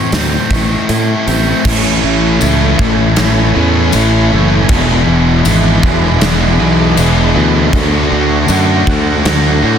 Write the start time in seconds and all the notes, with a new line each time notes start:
Already playing: A2 E3 A3 C4 E4
0.12 D2 A3 C4, snare, open hi-hat
0.51 A1 A3 E4, kick, open hi-hat
0.89 A2 A3 E4, open hi-hat
1.27 A1 C4, open hi-hat
1.65 A1 A2 E3 A3 C#4 E4 A4 C#5 G#5 B5, kick, crash
2.03 A1 A3 C#4 E4
2.41 C#2 A2 E3 A3 C#4 E4, tambourine, crash
2.78 A1 E3 A3 C#4 E4, kick
3.16 A1 A2 E3 A3 C#4 E4, snare, crash
3.55 E2 A2 E3 A3 C#4 E4
3.92 A1 A2 E3 A3 C#4 E4, tambourine, crash
4.32 F#1 A3 C#4 E4
4.69 E1 E2 B2 E3 G#3 B3 D4 E4 G#4 D5 E5 B5, kick, crash
5.07 E1 E3 G#3 D4 E4
5.45 G#1 E2 B2 E3 G#3 D4 E4, tambourine, crash
5.83 E1 B2 E3 G#3 D4 E4, kick
6.20 E1 E2 B2 E3 G#3 D4 E4, snare, crash
6.59 B1 E3 G#3 B3 D4 E4 G#4
6.97 E1 E2 B2 E3 G#3 B3 D4 E4 G#4, tambourine, crash
7.35 D2 E3 G#3 D4 E4
7.73 D2 D3 F#3 A3 D4 F#4 A4 D5 F#5 C#6, kick, crash
8.11 D2 A3 D4 F#4
8.48 F#2 D3 A3 D4 F#4, tambourine, crash
8.87 D2 A3 D4 F#4, kick
9.25 D2 D3 A3 D4 F#4, snare, crash
9.63 A2 D3 F#3 A3 D4 F#4